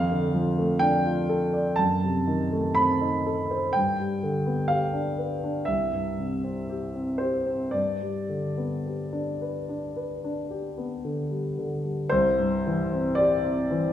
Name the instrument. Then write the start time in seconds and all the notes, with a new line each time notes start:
grand piano
Already playing: F2 F5
0.11 D3
0.34 F3
0.58 A3
0.79 D4 G5
1.06 F4
1.29 A4
1.53 D5
1.76 F#2 A5
2.04 C3
2.27 D#3
2.52 A3
2.75 C4 B5
3.02 D#4
3.26 A4
3.51 C5
3.73 G2 G5
3.99 G3
4.23 D3
4.46 B3
4.68 G4 F5
4.93 D4
5.18 B4
5.44 D4
5.65 C2 E5
5.93 G2
6.18 C3
6.44 C4
6.69 G4
6.95 C4
7.18 G4 C5
7.46 C4
7.71 G2 D5
8.02 G3
8.29 D3
8.57 B3
8.86 G4
9.13 D4
9.42 B4
9.69 D4
9.96 B4
10.24 D4
10.51 G4
10.78 B3
11.05 D3
11.31 G3
11.59 D3
11.84 G3
12.09 C2 C5
12.39 G2
12.67 E3
12.92 C4
13.15 G4 D5
13.44 C4
13.71 E3